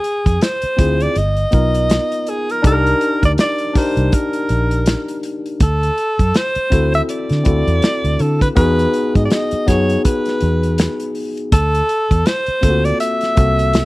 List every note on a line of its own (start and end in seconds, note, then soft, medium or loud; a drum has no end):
0.00 0.44 G#4 loud
0.04 closed hi-hat medium
0.26 0.38 F2 medium
0.26 kick medium
0.26 closed hi-hat soft
0.41 1.04 C5 loud
0.41 snare loud
0.41 closed hi-hat medium
0.62 muted fingered electric bass stroke soft
0.62 closed hi-hat medium
0.77 1.07 D2 medium
0.77 1.15 C4 medium
0.77 1.15 E4 medium
0.77 1.16 F4 medium
0.77 1.16 G#4 medium
0.77 kick loud
0.77 closed hi-hat medium
1.00 1.19 D5 medium
1.00 closed hi-hat medium
1.16 1.44 G1 loud
1.16 2.31 D#5 loud
1.16 closed hi-hat medium
1.37 closed hi-hat soft
1.51 1.97 B1 medium
1.51 2.49 B3 medium
1.51 2.49 D#4 medium
1.51 2.50 F4 medium
1.51 2.50 A#4 medium
1.51 kick medium
1.51 closed hi-hat medium
1.75 closed hi-hat medium
1.90 snare loud
1.90 closed hi-hat loud
2.12 closed hi-hat medium
2.27 2.52 G#4 medium
2.27 closed hi-hat medium
2.49 2.65 A#4 medium
2.49 closed hi-hat medium
2.62 2.92 C2 loud
2.62 3.60 D4 loud
2.62 3.61 D#4 medium
2.62 3.61 G4 medium
2.62 2.73 A4 medium
2.62 kick loud
2.62 closed hi-hat loud
2.67 3.20 A#4 loud
2.72 3.65 A#4 loud
2.86 closed hi-hat medium
3.01 closed hi-hat medium
3.23 3.35 D2 loud
3.23 3.32 D5 loud
3.23 kick medium
3.23 closed hi-hat medium
3.38 3.79 D5 loud
3.38 snare loud
3.38 closed hi-hat medium
3.58 closed hi-hat medium
3.73 5.02 D4 medium
3.73 5.02 D#4 medium
3.73 5.03 G4 medium
3.73 5.04 A#4 medium
3.73 muted fingered electric bass stroke soft
3.73 kick loud
3.73 snare soft
3.73 open hi-hat medium
3.77 4.16 C5 medium
3.97 4.09 C2 medium
3.97 closed hi-hat medium
4.12 5.25 A#4 medium
4.12 kick loud
4.12 closed hi-hat loud
4.33 closed hi-hat soft
4.49 4.94 A#1 medium
4.49 closed hi-hat medium
4.71 closed hi-hat medium
4.86 snare loud
4.86 closed hi-hat medium
5.08 closed hi-hat medium
5.23 closed hi-hat medium
5.46 closed hi-hat soft
5.60 5.89 D2 loud
5.60 6.38 A4 loud
5.60 kick loud
5.60 closed hi-hat loud
5.83 closed hi-hat medium
5.98 closed hi-hat medium
6.19 6.31 F#2 medium
6.19 kick medium
6.19 closed hi-hat soft
6.34 6.94 C5 loud
6.34 snare loud
6.34 closed hi-hat medium
6.55 muted fingered electric bass stroke soft
6.55 closed hi-hat medium
6.70 7.00 D2 medium
6.70 7.35 C4 medium
6.70 7.36 E4 medium
6.70 7.36 F#4 medium
6.70 7.37 A4 medium
6.70 kick medium
6.70 closed hi-hat medium
6.94 7.01 E5 loud
6.94 closed hi-hat medium
7.09 8.23 D5 loud
7.09 closed hi-hat medium
7.30 7.42 D3 medium
7.30 snare soft
7.30 closed hi-hat soft
7.44 7.62 D2 medium
7.44 8.41 C4 medium
7.44 8.42 E4 medium
7.44 8.43 F#4 medium
7.44 8.43 A4 medium
7.44 kick medium
7.44 closed hi-hat medium
7.67 7.79 E2 medium
7.67 closed hi-hat medium
7.82 muted fingered electric bass stroke soft
7.82 snare loud
7.82 closed hi-hat medium
8.04 8.16 D2 medium
8.04 closed hi-hat medium
8.19 8.48 D3 loud
8.19 8.41 A4 medium
8.19 closed hi-hat medium
8.41 8.49 B4 medium
8.41 kick medium
8.41 closed hi-hat soft
8.55 8.85 E2 loud
8.55 9.53 B3 loud
8.55 9.53 D#4 medium
8.55 9.54 F#4 medium
8.55 9.54 G#4 loud
8.55 9.17 B4 loud
8.55 kick loud
8.55 closed hi-hat medium
8.79 closed hi-hat medium
8.94 closed hi-hat medium
9.15 9.27 G#2 medium
9.15 9.25 D#5 medium
9.15 kick medium
9.15 closed hi-hat medium
9.25 9.33 D5 medium
9.30 9.69 D#5 loud
9.30 snare loud
9.30 closed hi-hat medium
9.51 muted fingered electric bass stroke soft
9.51 closed hi-hat medium
9.66 9.96 F#2 medium
9.66 10.94 B3 medium
9.66 10.95 D#4 medium
9.66 10.95 F#4 medium
9.66 10.96 G#4 medium
9.66 10.04 C#5 medium
9.66 kick medium
9.66 snare soft
9.66 closed hi-hat loud
9.90 closed hi-hat medium
10.05 11.12 B4 medium
10.05 kick loud
10.05 closed hi-hat loud
10.25 snare soft
10.25 closed hi-hat soft
10.41 10.86 E2 medium
10.41 closed hi-hat medium
10.63 closed hi-hat medium
10.78 snare loud
10.78 closed hi-hat loud
11.00 closed hi-hat medium
11.15 open hi-hat medium
11.37 closed hi-hat medium
11.52 11.81 D2 loud
11.52 12.28 A4 loud
11.52 kick loud
11.52 closed hi-hat loud
11.75 closed hi-hat medium
11.89 closed hi-hat medium
12.11 12.23 E2 medium
12.11 kick medium
12.11 closed hi-hat soft
12.26 12.86 C5 loud
12.26 snare loud
12.26 closed hi-hat medium
12.46 muted fingered electric bass stroke soft
12.46 closed hi-hat medium
12.61 12.91 D2 medium
12.61 13.26 A#3 medium
12.61 13.27 C4 medium
12.61 12.71 F4 soft
12.61 13.28 A4 medium
12.61 kick medium
12.61 closed hi-hat medium
12.70 13.31 F#4 medium
12.85 13.00 D5 loud
12.85 closed hi-hat medium
13.00 13.85 E5 loud
13.00 closed hi-hat medium
13.21 snare soft
13.21 closed hi-hat soft
13.35 13.81 C2 medium
13.35 13.85 A#3 medium
13.35 13.85 C4 medium
13.35 13.85 F#4 medium
13.35 13.85 A4 medium
13.35 kick loud
13.35 closed hi-hat medium
13.59 closed hi-hat medium
13.73 snare loud
13.73 closed hi-hat loud